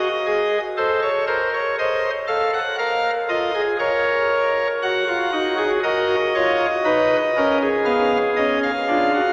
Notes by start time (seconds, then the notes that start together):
Already playing: D#5
0.26 G#4
0.77 A4 C5
1.02 C#5
1.27 A#4 C5
1.54 C#5
1.78 C5 D#5
2.27 A4 F5
2.54 F#5
2.78 A#4 F5
3.28 F4 D#5
3.55 G#4
3.79 A#4 C#5
4.82 F#4 F#5
5.08 F4
5.33 D#4 F#4
5.58 G#4
5.83 F#4 A#4 D#5
6.35 F4 C#5
6.85 D#4 B4
7.37 C#4 A#4
7.62 G#4
7.85 B3 F5
8.36 C#4 D#5
8.63 F5
8.88 D4 F4
9.15 F#4